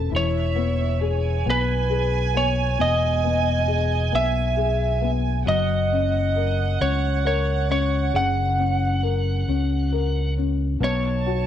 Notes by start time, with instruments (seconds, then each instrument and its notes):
Already playing: felt piano C#4 A4 B4, violin section A5
0.11 fingered electric bass E1, felt piano E3, violin section E5
0.16 electric slide guitar C#5
0.55 felt piano B3
1.01 felt piano G#4, violin section G#5
1.46 fingered electric bass B1, felt piano B3
1.50 electric slide guitar B4
1.90 felt piano G#4
2.34 felt piano B3, electric slide guitar C#5
2.79 fingered electric bass E1, felt piano B2, electric slide guitar D#5
3.24 felt piano B3
3.68 felt piano G#4
4.12 fingered electric bass B1, felt piano B3, electric slide guitar E5
4.57 felt piano G#4
5.01 felt piano B3
5.46 fingered electric bass F#1, felt piano F#3, electric slide guitar D#5, violin section F#5
5.92 felt piano C#4
6.36 felt piano A#4
6.80 fingered electric bass C#2, felt piano C#4, electric slide guitar C#5
7.25 felt piano A#4, electric slide guitar C#5
7.69 felt piano C#4, electric slide guitar C#5
8.14 fingered electric bass F#1, felt piano C#3, electric slide guitar F#5
8.59 felt piano C#4
9.03 felt piano A#4
9.48 fingered electric bass C#2, felt piano C#4
9.92 felt piano A#4
10.37 felt piano C#4
10.80 fingered electric bass B1, felt piano B3, electric slide guitar C#5, violin section A5
11.26 felt piano F#4